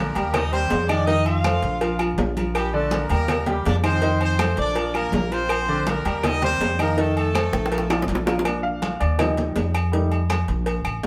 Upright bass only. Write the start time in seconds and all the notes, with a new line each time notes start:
0.16 D#2
0.71 F2
1.62 A#1
2.18 A#1
3.10 D#2
3.66 F2
4.58 A#1
5.13 A#1
6.05 D#2
6.60 F2
7.53 A#1
8.09 A#1
9.01 D#2
9.56 F2
10.48 A#1
10.85 A1
11.04 A#1